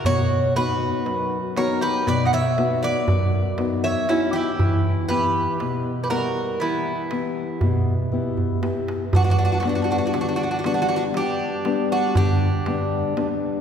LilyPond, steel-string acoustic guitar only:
\new Staff \with { instrumentName = "Steel-string acoustic guitar" } { \time 9/8 \tempo 4. = 40 b,8 <b dis' fis'>8 fis,8 <b dis' fis'>8 b,8 <b dis' fis'>8 fis,8 <b dis' fis'>8 <b dis' fis'>8 | e8 <b e' g'>8 b,8 <g b e'>8 e8 <b e' g'>8 b,8 <b e' g'>8 <b e' g'>8 | g,8 <g b d'>8 d8 <g b d'>8 g,8 <g b d'>8 d8 <g b d'>8 <g b d'>8 | }